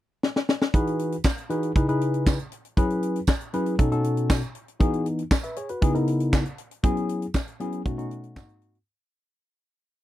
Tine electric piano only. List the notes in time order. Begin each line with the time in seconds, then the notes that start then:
0.74 E3 D#4 F#4 G#4 B4
1.50 E3 D#4 F#4 G#4 B4
1.75 C#3 D#4 E4 G#4 B4
1.88 C#3 D#4 E4 G#4 B4
2.77 F#3 C#4 E4 G#4 B4
3.53 F#3 C#4 E4 G#4 B4
3.78 B2 C#4 D#4 F#4 A4
3.91 B2 C#4 D#4 F#4 A4
4.80 E3 B3 D#4 F#4 G#4
5.44 B4 E5
5.57 G#4 C#5
5.69 F#4 B4
5.81 C#3 B3 D#4 E4 G#4
5.94 C#3 B3 D#4 E4 A#4
6.83 F#3 B3 C#4 E4 G#4
7.60 F#3 B3 C#4 E4 G#4
7.85 B2 A3 C#4 D#4 F#4
7.97 B2 A3 C#4 D#4 F#4
8.36 G#2 A#3 C4 D#4 F#4